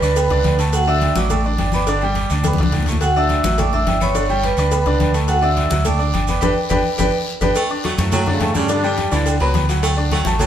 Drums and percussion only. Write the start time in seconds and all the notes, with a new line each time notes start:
0.02 high conga, low agogo, short guiro, maracas
0.16 cowbell, high conga, low agogo, long guiro, maracas
0.30 cowbell, high conga, maracas
0.44 cowbell, high conga, low agogo, short guiro, maracas
0.58 cowbell, high conga, low agogo, short guiro, maracas
0.73 cowbell, high conga, low agogo, long guiro, maracas
0.87 high conga, maracas
1.01 cowbell, high conga, low agogo, short guiro, maracas
1.16 high conga, short guiro, maracas
1.30 cowbell, high conga, low conga, low agogo, long guiro, maracas
1.44 high conga, maracas
1.58 cowbell, high conga, low timbale, low agogo, short guiro, maracas
1.72 high conga, low agogo, short guiro, maracas
1.87 cowbell, high conga, long guiro, maracas
2.01 high conga, low agogo, maracas
2.15 cowbell, high conga, low agogo, short guiro, maracas
2.30 high conga, low agogo, short guiro, maracas
2.43 cowbell, high conga, low agogo, long guiro, maracas
2.53 high conga
2.58 cowbell, maracas
2.63 high conga
2.72 cowbell, low conga, low timbale, low agogo, short guiro, maracas
2.82 cowbell, low conga
2.87 low agogo, short guiro, maracas
2.92 low conga
3.01 cowbell, high conga, low agogo, long guiro, maracas
3.16 high conga, maracas
3.29 cowbell, high conga, low agogo, short guiro, maracas
3.44 high conga, short guiro, maracas
3.58 cowbell, high conga, low conga, low agogo, long guiro, maracas
3.73 high conga, low conga, maracas
3.87 cowbell, high conga, low timbale, low agogo, short guiro, maracas
4.00 high conga, low agogo, short guiro, maracas
4.14 cowbell, high conga, long guiro, maracas
4.29 high conga, low agogo, maracas
4.43 cowbell, high conga, low agogo, short guiro, maracas
4.57 high conga, low agogo, short guiro, maracas
4.71 cowbell, high conga, low agogo, long guiro, maracas
4.86 cowbell, high conga, maracas
5.00 cowbell, high conga, low agogo, short guiro, maracas
5.14 cowbell, high conga, low agogo, short guiro, maracas
5.28 cowbell, high conga, low agogo, long guiro, maracas
5.42 high conga, maracas
5.57 cowbell, high conga, low agogo, short guiro, maracas
5.70 high conga, short guiro, maracas
5.85 cowbell, high conga, low conga, low agogo, long guiro, maracas
5.99 high conga, maracas
6.14 cowbell, high conga, low agogo, short guiro, maracas
6.27 high conga, low agogo, short guiro, maracas
6.42 cowbell, high conga, high timbale, long guiro, maracas
6.70 cowbell, high conga, high timbale, long guiro, maracas
6.98 cowbell, high conga, high timbale, long guiro, maracas
7.41 cowbell, high conga, high timbale, long guiro, maracas
7.55 cowbell, high conga, low agogo, long guiro, maracas
7.70 high conga, maracas
7.84 cowbell, high conga, low agogo, short guiro, maracas
7.98 high conga, short guiro, maracas
8.12 cowbell, high conga, low conga, low agogo, long guiro, maracas
8.26 high conga, low conga, maracas
8.40 cowbell, high conga, low timbale, low agogo, short guiro, maracas
8.54 high conga, low agogo, short guiro, maracas
8.69 cowbell, high conga, long guiro, maracas
8.83 high conga, low agogo, maracas
8.97 cowbell, high conga, low agogo, short guiro, maracas
9.11 high conga, low agogo, short guiro, maracas
9.26 cowbell, high conga, low agogo, long guiro, maracas
9.40 cowbell, high conga, maracas
9.54 cowbell, high conga, low timbale, low agogo, short guiro, maracas
9.69 cowbell, high conga, low agogo, short guiro, maracas
9.83 cowbell, high conga, low agogo, long guiro, maracas
9.97 high conga, maracas
10.11 cowbell, high conga, low agogo, short guiro, maracas
10.25 high conga, short guiro, maracas
10.39 cowbell, high conga, low conga, low agogo, maracas